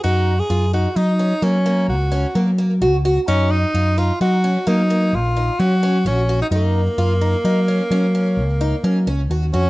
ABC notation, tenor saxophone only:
X:1
M:7/4
L:1/16
Q:1/4=130
K:F#
V:1 name="Tenor saxophone"
F3 G3 F2 D4 C4 F6 z6 | C2 D4 E2 F4 D4 E4 F4 C3 D | A,24 z2 C2 |]